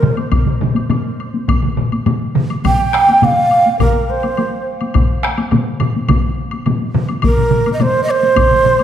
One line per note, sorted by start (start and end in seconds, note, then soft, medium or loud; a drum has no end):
0.00 0.14 A#4 medium
0.00 taiko low-mid loud
0.00 taiko mid loud
0.17 taiko high soft
0.17 high woodblock soft
0.32 taiko loud
0.32 taiko low-mid medium
0.32 taiko mid medium
0.32 taiko high medium
0.32 high woodblock soft
0.46 taiko low-mid medium
0.46 taiko mid medium
0.61 taiko low-mid loud
0.61 taiko mid medium
0.75 taiko high medium
0.75 high woodblock soft
0.90 taiko low-mid loud
0.90 taiko mid medium
0.90 taiko high medium
0.90 high woodblock soft
1.20 high woodblock soft
1.34 taiko high medium
1.48 taiko medium
1.48 taiko low-mid medium
1.48 taiko mid medium
1.48 taiko high medium
1.48 high woodblock medium
1.62 taiko low-mid medium
1.62 taiko mid medium
1.77 taiko low-mid medium
1.77 taiko mid medium
1.92 taiko high soft
1.92 high woodblock soft
2.06 taiko low-mid loud
2.06 taiko mid medium
2.06 taiko high medium
2.06 high woodblock soft
2.35 taiko low-mid medium
2.35 taiko mid loud
2.50 taiko high soft
2.50 high woodblock soft
2.64 3.26 G5 medium
2.64 taiko medium
2.64 taiko low-mid loud
2.64 taiko mid medium
2.64 taiko high medium
2.64 high woodblock medium
2.93 taiko rim medium
3.08 taiko high soft
3.08 high woodblock soft
3.22 3.79 F5 medium
3.22 taiko low-mid loud
3.22 taiko mid medium
3.22 taiko high medium
3.22 high woodblock soft
3.51 high woodblock soft
3.66 taiko high medium
3.80 4.11 A#4 medium
3.80 taiko medium
3.80 taiko low-mid medium
3.80 taiko mid medium
3.80 taiko high medium
3.80 high woodblock soft
4.10 4.67 C5 medium
4.23 taiko high soft
4.23 high woodblock soft
4.37 taiko high medium
4.37 high woodblock soft
4.81 taiko high medium
4.81 high woodblock soft
4.94 taiko loud
4.94 taiko low-mid medium
4.94 taiko mid medium
4.94 taiko high medium
4.94 high woodblock soft
5.23 taiko rim medium
5.38 taiko high medium
5.38 high woodblock soft
5.51 taiko low-mid loud
5.51 taiko mid medium
5.51 taiko high medium
5.51 high woodblock soft
5.80 taiko low-mid loud
5.80 taiko mid medium
5.80 high woodblock soft
5.96 taiko high soft
6.08 taiko medium
6.08 taiko low-mid loud
6.08 taiko mid loud
6.08 taiko high medium
6.08 high woodblock medium
6.51 taiko high soft
6.51 high woodblock soft
6.66 taiko low-mid loud
6.66 taiko mid medium
6.66 taiko high medium
6.66 high woodblock soft
6.82 taiko high soft
6.94 taiko low-mid loud
6.94 taiko mid loud
7.09 taiko high soft
7.09 high woodblock soft
7.22 7.72 A#4 medium
7.22 taiko medium
7.22 taiko low-mid medium
7.22 taiko mid medium
7.22 taiko high medium
7.22 high woodblock medium
7.37 taiko low-mid medium
7.37 taiko mid medium
7.51 taiko low-mid medium
7.51 taiko mid medium
7.66 taiko high soft
7.66 high woodblock soft
7.73 7.83 D#5 medium
7.80 8.03 C5 medium
7.80 taiko low-mid medium
7.80 taiko mid medium
7.80 taiko high medium
7.80 high woodblock soft
8.04 8.13 D#5 medium
8.08 8.84 C5 loud
8.08 high woodblock soft
8.23 taiko high medium
8.37 taiko loud
8.37 taiko low-mid medium
8.37 taiko mid medium
8.37 taiko high medium
8.37 high woodblock medium
8.51 taiko low-mid medium
8.51 taiko mid medium
8.65 taiko low-mid medium
8.65 taiko mid medium
8.79 taiko high medium
8.79 high woodblock soft